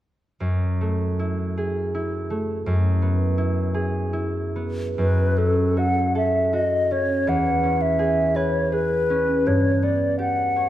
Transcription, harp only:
0.40 F#2
0.81 A3
1.19 E4
1.57 G#4
1.95 E4
2.30 A3
2.66 F#2
3.02 B3
3.38 E4
3.74 G#4
4.13 E4
4.56 B3
4.98 F#2
5.38 C#4
5.77 F#4
6.15 A4
6.53 F#4
6.91 C#4
7.27 E2
7.63 C#4
7.99 G#4
8.36 B4
8.72 G#4
9.10 C#4
9.47 G2
9.83 B3
10.19 G4
10.56 C#5

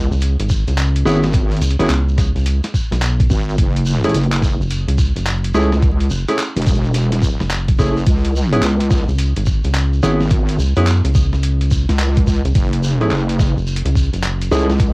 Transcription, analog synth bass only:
0.11 C#2
0.40 G#1
0.68 C#2
1.61 C#2
1.89 C#2
2.35 C#2
2.92 B1
4.60 F#1
4.88 C#2
5.16 F#1
6.10 F#1
7.40 F#1
9.08 C#2
9.37 G#1
9.64 C#2
10.58 C#2
10.77 F#2
11.04 C#2
12.45 C#2
13.57 F#1
13.85 C#2
14.13 F#1

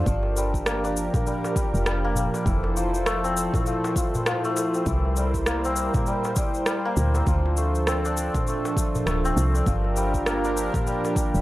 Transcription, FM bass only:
0.06 G1
1.74 F1
2.46 F1
4.86 C2
6.97 D2
7.27 D2
9.06 D1
9.37 C2
9.67 G1
11.34 F1

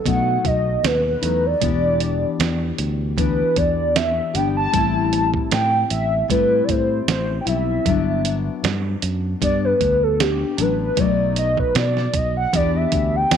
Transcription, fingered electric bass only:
0.06 B2
0.45 B1
0.83 D#2
1.22 E2
1.62 E1
2.39 E2
2.79 D2
3.57 E2
4.35 G1
4.74 A1
5.52 A2
5.91 A1
6.30 A2
6.69 A2
7.08 A1
7.46 B1
7.86 G1
8.64 G2
9.03 F#2
9.42 G2
9.81 D2
10.58 A1
10.97 B1
11.75 B2
12.14 B1
12.53 E2
12.92 D2
13.31 E2

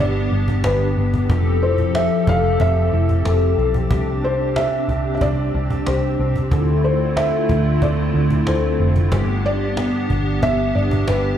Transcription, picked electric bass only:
0.00 G1
0.32 G1
0.64 G1
0.97 G1
1.29 F1
2.27 F1
2.60 F1
2.92 F1
3.25 F1
3.58 B1
3.91 C2
4.89 C2
5.21 C2
5.54 C2
5.87 C2
6.20 C2
6.52 D2
7.49 D2
7.82 D2
8.15 D2
8.48 D2
8.80 F1
9.12 G1
10.10 G1
10.43 G1
10.76 G1
11.08 G1

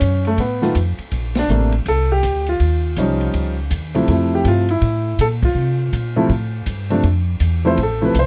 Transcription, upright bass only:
0.01 F#2
0.38 A2
0.75 F2
0.99 muted upright bass stroke
1.12 A#1
1.49 A1
1.86 C2
2.23 D2
2.60 D#2
2.97 C2
3.34 C#2
3.71 D#2
4.08 F2
4.45 G2
4.82 A2
5.19 A#2
5.55 C3
5.93 A#2
6.29 A2
6.66 G2
7.04 F2
7.40 E2
7.77 A1
8.15 C2

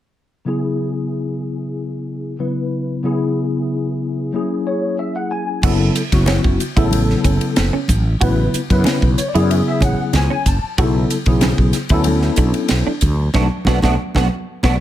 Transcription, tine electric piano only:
0.45 C#3 F#3 B3 E4 G#4
2.39 C#3 F#3 B3 E4 B4
3.03 C#3 F#3 B3 E4 G#4
4.33 F#3 A#3 C#4 E4 G#4
4.67 C#5
4.99 E5
5.16 F#5
5.31 G#5
5.63 C#3 F#3 B3 E4 A4
6.12 C#3 F#3 B3 E4 F#4
6.76 C#3 F#3 B3 E4 A4
8.21 C#3 F#3 B3 E4 B4
8.70 C#3 F#3 B3 E4 B4
9.18 C#5
9.28 D5
9.34 C#3 F#3 B3 E4 G#4
9.51 E5
9.68 E5
9.84 F#5
10.16 G#5
10.33 G#5
10.48 A5
10.78 C#3 F#3 B3 E4 A4
11.26 C#3 F#3 B3 E4 G#4
11.91 F#3 B3 C#4 E4 A4
13.35 A3 B3 D4
13.66 A3 B3 D4
13.83 A3 B3 D4
14.15 A3 B3 D4
14.63 A3 B3 D4

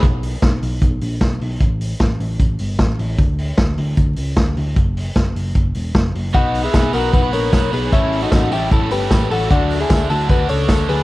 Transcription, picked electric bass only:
0.03 B1
0.42 B1
0.62 B1
0.82 B1
1.02 A#1
1.21 B1
1.41 B1
1.60 A1
2.00 A1
2.20 A1
2.39 A1
2.60 G1
2.79 A1
2.99 A1
3.18 D2
3.58 D2
3.78 D2
3.97 D2
4.17 C#2
4.37 D2
4.57 D2
4.76 F#1
5.16 F#1
5.35 F#1
5.55 F#1
5.75 E1
5.95 F#1
6.15 F#1
6.34 B1
6.74 B1
6.94 B1
7.13 B1
7.33 A#1
7.53 B1
7.73 B1
7.92 A1
8.32 A1
8.51 A1
8.71 A1
8.90 G1
9.11 A1
9.30 A1
9.51 D2
9.90 D2
10.10 D2
10.29 D2
10.50 C#2
10.69 D2
10.89 D2

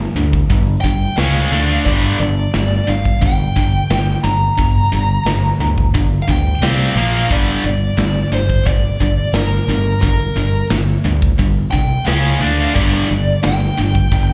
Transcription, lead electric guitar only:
0.81 G5
1.17 F5
1.85 D5
2.20 D5
2.89 F5
3.23 G5
4.24 A#5
6.22 F5
6.30 G5
6.64 F5
7.32 D5
7.66 D5
8.34 C5
8.66 D5
9.34 A#4
10.01 A#4
11.71 G5
12.06 F5
12.75 D5
13.43 G5

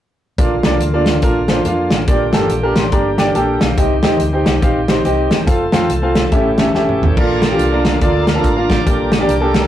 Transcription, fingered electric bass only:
0.38 A#1
0.64 C2
0.81 D2
1.23 A#1
1.66 F2
1.91 A1
2.08 A#1
2.34 G1
2.50 A#1
2.76 A1
2.92 G1
3.35 A#1
3.61 B1
3.78 C2
4.04 D#2
4.20 D2
4.46 C2
4.62 A#1
5.05 C2
5.31 E1
5.47 F1
5.73 F2
5.90 C2
6.32 A1
6.75 E1
7.00 A1
7.17 A#1
7.59 C2
8.02 D2
8.44 A1
8.87 A#1
9.29 C2

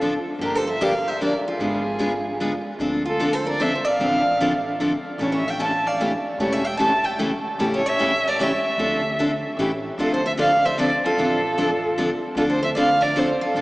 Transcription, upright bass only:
Already playing: A1
0.39 G1
1.59 G#1
2.79 D2
3.99 A1
5.18 A1
6.38 E1
7.58 A1
8.78 D2
9.57 A1
9.98 D2
11.17 A1
12.35 D2
13.54 A1

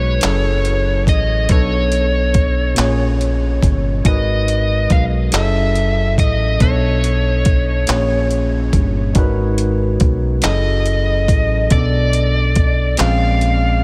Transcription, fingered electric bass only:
Already playing: B1
0.24 F#1
1.08 A1
1.50 B1
2.78 A#1
3.63 G1
4.06 G#1
4.91 B1
5.33 F#1
6.19 A1
6.61 B1
7.89 A#1
8.74 G1
9.16 G#1
10.01 B1
10.44 F#1
11.29 A1
11.72 B1
13.00 A#1

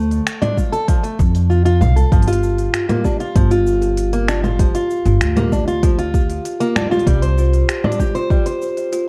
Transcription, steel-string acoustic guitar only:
Already playing: A3
0.42 D4
0.57 F4
0.72 A4
0.88 F3
1.03 A3
1.50 F4
1.65 F4
1.81 F5
1.96 A4
2.12 F3
2.27 F4
2.89 A#3
3.05 D4
3.20 F4
3.36 F3
3.51 F4
4.13 A#3
4.28 D4
4.44 F4
4.60 F3
4.75 F4
5.37 A#3
5.52 D4
5.68 F4
5.83 F3
5.99 F4
6.60 A#3
6.76 D4
6.91 F4
7.07 G3
7.22 C5
7.84 D4
7.99 G4
8.15 C5
8.30 G3
8.46 C5

